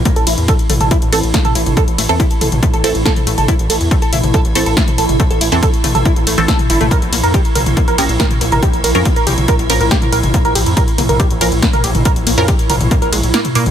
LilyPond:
<<
  \new Staff \with { instrumentName = "Synth arpeggio sound" } { \time 4/4 \key a \phrygian \tempo 4 = 140 a16 a'16 e'16 r16 a'16 r16 a16 a'16 e'16 r16 a'16 r16 a16 a'16 e'16 r16 | a'16 r16 a16 a'16 e'16 r16 a'16 r16 a16 a'16 e'16 r16 a'16 r16 a16 a'16 | e'16 r16 a'16 r16 a16 a'16 e'16 r16 a'16 r16 a16 a'16 e'16 r16 a'16 r16 | a16 a'16 e'16 r16 a'16 r16 a16 a'16 e'16 r16 a16 r16 a'16 r16 e'16 a16 |
bes'16 r16 bes16 bes'16 g'16 r16 bes'16 r16 bes16 bes'16 g'16 r16 bes'16 r16 bes16 bes'16 | g'16 r16 bes'16 r16 bes16 bes'16 g'16 r16 bes'16 r16 bes16 bes'16 g'16 r16 bes'16 r16 | bes16 bes'16 g'16 r16 bes'16 r16 bes16 bes'16 g'16 r16 bes'16 r16 bes16 bes'16 g'16 r16 | bes'16 r16 bes16 bes'16 g'16 r16 bes'16 r16 bes16 bes'16 gis16 r16 bes16 r16 bes16 r16 | }
  \new Staff \with { instrumentName = "Synth stab" } { \time 4/4 \key a \phrygian r2 r8 <e c' a'>16 r4 r16 | r8. <e c' a'>16 r4. <e c' a'>4.~ | <e c' a'>2~ <e c' a'>8 <e c' a'>16 r4 r16 | r8. <e c' a'>16 r4. r16 <e c' a'>8 r8. |
r2 r8 <f des' bes'>16 r4 r16 | r8. <f des' bes'>16 r4. <f des' bes'>4.~ | <f des' bes'>2~ <f des' bes'>8 <f des' bes'>16 r4 r16 | r8. <f des' bes'>16 r2. | }
  \new Staff \with { instrumentName = "Synth drone" } { \clef bass \time 4/4 \key a \phrygian <a, e'>1~ | <a, e'>1~ | <a, e'>1~ | <a, e'>1~ |
<a, e'>1~ | <a, e'>1~ | <a, e'>1~ | <a, e'>1 | }
  \new Staff \with { instrumentName = "Analog synth bass" } { \clef bass \time 4/4 \key a \phrygian r16 a,,16 a,,16 e,16 r8 a,,16 a,,16 r16 a,,16 a,,16 a,,16 r8 a,,16 g,,16 | r16 a,,16 a,,16 e,16 r8 a,,16 a,,16 r16 a,,16 a,,16 a,,16 r8 a,,16 g,,16 | r16 a,,16 a,,16 e,16 r8 a,,16 a,,16 r16 a,,16 a,,16 a,,16 r8 a,,16 g,,16 | r16 a,,16 a,,16 e,16 r8 a,,16 a,,16 r16 a,,16 a,,16 a,,16 r8 g,,16 a,,16 |
r16 bes,,16 bes,,16 f,16 r8 bes,,16 bes,,16 r16 bes,,16 bes,,16 bes,,16 r8 bes,,16 gis,,16 | r16 bes,,16 bes,,16 f,16 r8 bes,,16 bes,,16 r16 bes,,16 bes,,16 bes,,16 r8 bes,,16 gis,,16 | r16 bes,,16 bes,,16 f,16 r8 bes,,16 bes,,16 r16 bes,,16 bes,,16 bes,,16 r8 bes,,16 gis,,16 | r16 bes,,16 bes,,16 f,16 r8 bes,,16 bes,,16 r16 bes,,16 bes,,16 bes,,16 r8 bes,16 bes,,16 | }
  \new DrumStaff \with { instrumentName = "Drums" } \drummode { \time 4/4 <hh bd>16 hh16 <hho cymr>16 hh16 <hh bd>16 hh16 <hho cymr toml>16 <hh toml>16 <hh bd>16 hh16 <hho cymr>16 hh16 <hh bd sn>16 <hh toml>16 <hho cymr>16 <hh toml>16 | <hh bd>16 hh16 <hho cymr>16 hh16 <hh bd>16 hh16 <hho cymr toml>16 <hh toml>16 <hh bd>16 hh16 <hho cymr>16 hh16 <hh bd sn>16 <hh toml>16 <hho cymr>16 <hh toml>16 | <hh bd>16 hh16 <hho cymr>16 hh16 <hh bd>16 hh16 <hho cymr toml>16 <hh toml>16 <hh bd>16 hh16 <hho cymr>16 hh16 <hh bd sn>16 <hh toml>16 <hho cymr>16 <hh toml>16 | <hh bd>16 hh16 <hho cymr>16 hh16 <hh bd>16 hh16 <hho cymr toml>16 <hh toml>16 <hh bd>16 hh16 <hho cymr>16 hh16 <hh bd sn>16 <hh toml>16 <hho cymr>16 <hh toml>16 |
<hh bd>16 hh16 <hho cymr>16 hh16 <hh bd>16 hh16 <hho cymr toml>16 <hh toml>16 <hh bd>16 hh16 <hho cymr>16 hh16 <hh bd sn>16 <hh toml>16 <hho cymr>16 <hh toml>16 | <hh bd>16 hh16 <hho cymr>16 hh16 <hh bd>16 hh16 <hho cymr toml>16 <hh toml>16 <hh bd>16 hh16 <hho cymr>16 hh16 <hh bd sn>16 <hh toml>16 <hho cymr>16 <hh toml>16 | <hh bd>16 hh16 <hho cymr>16 hh16 <hh bd>16 hh16 <hho cymr toml>16 <hh toml>16 <hh bd>16 hh16 <hho cymr>16 hh16 <hh bd sn>16 <hh toml>16 <hho cymr>16 <hh toml>16 | <hh bd>16 hh16 <hho cymr>16 hh16 <hh bd>16 hh16 <hho cymr toml>16 <hh toml>16 <hh bd>16 hh16 <hho cymr>16 hh16 <hh sn>16 <hh toml>16 <hho cymr>16 <hh toml>16 | }
>>